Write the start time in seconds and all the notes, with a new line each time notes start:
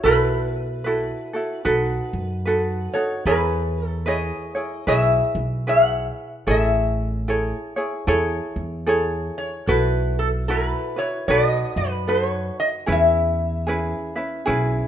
0.03 B1 E4 F#4 A4 B4
0.84 E4 F#4 A4 B4
1.33 E4 F#4 A4
1.65 B1 D#4 F#4 A4 B4
2.13 F#2
2.45 D#4 F#4 A4 B4
2.94 D#4 F#4 A4 C#5
3.25 E2 E4 G#4 B4 C#5
3.86 A4
4.06 E4 G#4 B4 C#5 D#5
4.55 E4 G#4 C#5
4.87 B1 E4 G#4 B4 C#5 E5
5.35 B1
5.67 E4 G#4 B4 C#5 F#5
6.47 A1 E4 G#4 A4 C#5 E5
7.28 E4 G#4 A4 C#5
7.76 E4 G#4 C#5
8.07 E2 E4 G#4 A4 C#5
8.56 E2
8.87 E4 G#4 A4 C#5
9.38 C#5
9.67 B1 E4 F#4 A4 B4
10.19 A4
10.48 E4 F#4 A4 A#4 B4
10.67 B4
10.96 E4 F#4 B4 C#5
11.28 B1 D#4 F#4 A4 B4 D5
11.47 D#5
11.76 F#2 B4
12.07 D#4 F#4 A4 B4 C5
12.28 C#5
12.60 D#5
12.86 E2 C#4 E4 G#4 B4
12.92 E5
13.67 C#4 E4 G#4 B4
14.16 C#4 E4 B4
14.46 B1 C#4 E4 G#4 B4